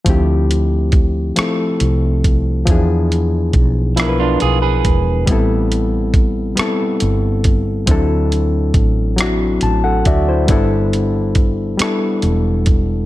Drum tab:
HH |xxxxxx|xxxxxx|xxxxxx|xxxxxx|
SD |---r--|---r--|---r--|---r--|
BD |o-o--o|o-o--o|o-o--o|o-o--o|

HH |xxxxxx|
SD |---r--|
BD |o-o--o|